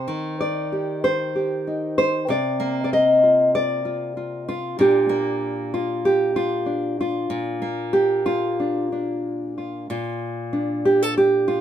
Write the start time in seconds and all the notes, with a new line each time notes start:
Already playing: C5
0.08 D#3
0.41 D5
0.72 G4
1.04 C5
1.35 G4
1.67 D#4
1.98 C5
2.28 C3 D5
2.60 A#3
2.84 D5
2.93 D#5
3.23 F4
3.55 D5
3.85 F4
4.17 F4
4.49 F4
4.79 A#2 A#3 D4 F4 G4
5.09 A#3
5.74 F4
6.05 G4
6.36 F4
6.66 D4
7.01 F4
7.30 A#2
7.62 A#3
7.93 G4
8.26 F4
8.60 D4
8.92 D4
9.58 F4
9.90 A#2 F4
10.53 D4
10.85 G4
11.02 A4
11.18 G4
11.48 F4